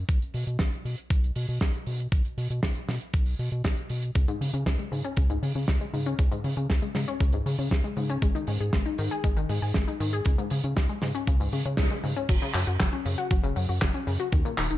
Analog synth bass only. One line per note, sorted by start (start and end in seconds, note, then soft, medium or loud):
0.09 0.19 B1 loud
0.34 0.45 B2 loud
0.47 0.57 B2 medium
0.60 0.70 B1 medium
0.85 0.95 B2 medium
1.10 1.31 B1 loud
1.36 1.46 B2 loud
1.49 1.59 B2 loud
1.61 1.72 B1 medium
1.87 2.08 B2 medium
2.12 2.22 B1 medium
2.38 2.48 B2 loud
2.50 2.61 B2 loud
2.63 2.73 B1 medium
2.88 2.99 B2 medium
3.14 3.35 B1 loud
3.39 3.50 B2 loud
3.52 3.62 B2 loud
3.65 3.75 B1 loud
3.90 4.11 B2 medium
4.15 4.26 C#2 medium
4.41 4.51 C#3 loud
4.54 4.64 C#3 loud
4.66 4.77 C#2 medium
4.92 5.02 C#3 medium
5.17 5.38 C#2 loud
5.43 5.53 C#3 loud
5.55 5.66 C#3 loud
5.68 5.78 C#2 loud
5.93 6.14 C#3 medium
6.19 6.29 C#2 medium
6.44 6.55 C#3 loud
6.57 6.67 C#3 loud
6.70 6.80 C#2 medium
6.95 7.05 C#3 medium
7.21 7.41 C#2 medium
7.46 7.56 C#3 loud
7.59 7.69 C#3 loud
7.71 7.82 C#2 medium
7.97 8.18 C#3 medium
8.22 8.33 G#1 medium
8.48 8.58 G#2 loud
8.60 8.71 G#2 medium
8.73 8.84 G#1 medium
8.99 9.09 G#2 medium
9.24 9.45 G#1 loud
9.49 9.60 G#2 loud
9.62 9.73 G#2 loud
9.75 9.85 G#1 medium
10.00 10.21 G#2 medium
10.26 10.36 C#2 loud
10.51 10.62 C#3 loud
10.64 10.74 C#3 medium
10.77 10.87 C#2 medium
11.02 11.12 C#3 medium
11.27 11.48 C#2 loud
11.53 11.63 C#3 loud
11.65 11.76 C#3 medium
11.78 11.89 C#2 medium
12.04 12.14 C#3 loud
12.29 12.39 F#1 medium
12.55 12.65 F#2 loud
12.67 12.78 F#2 loud
12.80 12.90 F#1 medium
13.05 13.16 F#2 medium
13.31 13.52 F#1 medium
13.56 13.67 F#2 medium
13.69 13.79 F#2 medium
13.82 13.92 F#1 loud
14.07 14.18 F#2 loud
14.33 14.43 D#2 loud
14.58 14.68 D#1 loud
14.71 14.78 D#1 loud